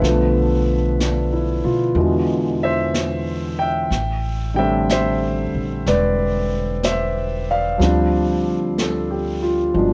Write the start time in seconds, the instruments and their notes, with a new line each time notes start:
Already playing: grand piano B4 E5
0.00 upright bass B1, grand piano D3 F3 A3, brush sweep, snare
0.05 grand piano B3
1.00 grand piano D4, brush sweep, snare, hi-hat pedal
1.32 grand piano E4
1.64 upright bass B2, grand piano F4
1.95 upright bass E2, grand piano B2 D3 E3 G#3, brush sweep
2.63 grand piano C5 E5
2.94 brush sweep, snare, hi-hat pedal
3.59 grand piano E5 G5
3.90 upright bass A1, brush sweep, snare
4.54 grand piano D3 G3 A3 G5
4.59 grand piano C4 E5
4.89 grand piano C5 E5, brush sweep, snare, hi-hat pedal
5.54 upright bass A#1
5.86 upright bass E1, grand piano B4 D5, brush sweep, snare
6.83 grand piano C5 E5, brush sweep, snare, hi-hat pedal
7.51 grand piano D5 F5
7.78 upright bass D2, grand piano F3 G3 C4, brush sweep, snare
7.83 grand piano D4
8.78 grand piano A4, brush sweep, snare, hi-hat pedal
9.11 grand piano G4
9.42 grand piano F4
9.74 upright bass G1, grand piano B2 F3 G#3, brush sweep
9.79 grand piano D4